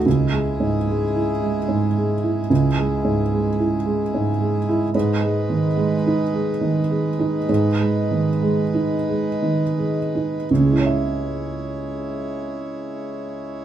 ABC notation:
X:1
M:3/4
L:1/8
Q:1/4=71
K:C#m
V:1 name="Harmonium"
[G,EG]6- | [G,EG]6 | [G,DB]6- | [G,DB]6 |
[G,Ec]6 |]
V:2 name="Felt piano" clef=bass
(3C,, G, G,, (3G, E G, (3G,, G, E | (3C,, G, G,, (3G, E G, (3G,, G, E | (3G,, G, D, (3G, D G, (3D, G, D | (3G,, G, D, (3G, D G, (3D, G, D |
[C,,C,G,Ece]6 |]